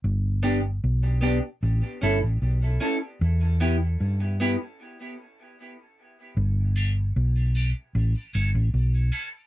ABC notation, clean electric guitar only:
X:1
M:4/4
L:1/8
Q:1/4=76
K:Glyd
V:1 name="Clean electric guitar"
z [B,DG] z [B,DG] z [CEA] z [CEA] | z [B,EG] z [B,EG] z4 | z [B,DG] z [B,DG] z [CEA] z [CEA] |]